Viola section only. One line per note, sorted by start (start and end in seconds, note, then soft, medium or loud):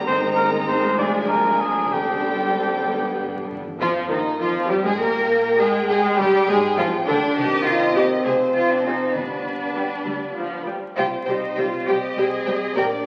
0.08 0.95 D#3 medium
0.08 1.89 G#3 medium
0.99 1.89 F3 medium
1.93 3.57 D3 soft
1.93 3.57 G3 soft
3.80 4.09 F3 medium
4.10 4.18 D#3 medium
4.40 4.70 F3 medium
4.70 4.85 G3 medium
4.84 4.91 G#3 medium
5.00 5.59 A#3 medium
5.59 5.88 G#3 medium
5.89 6.18 G#3 medium
6.19 6.49 G3 medium
6.49 6.57 G#3 medium
6.78 6.86 F3 medium
7.08 7.16 D3 medium
7.96 8.18 C4 medium
7.96 8.18 G4 medium
8.86 9.08 C4 medium
8.86 9.08 F4 medium
9.77 9.98 G3 soft
9.77 9.98 G4 medium
10.06 10.14 G3 soft
10.37 10.66 F3 soft
10.67 10.75 G3 soft
10.98 11.06 G3 soft
10.98 11.06 G4 medium
11.28 11.36 G3 soft
11.28 11.37 G4 soft
11.58 11.66 G3 soft
11.58 11.66 G4 soft
11.88 11.96 G3 soft
11.88 11.97 G4 medium
12.18 12.26 G3 medium
12.18 12.26 G4 medium
12.47 12.55 G3 soft
12.47 12.55 G4 soft
12.76 12.84 A#3 medium
12.76 12.84 G4 medium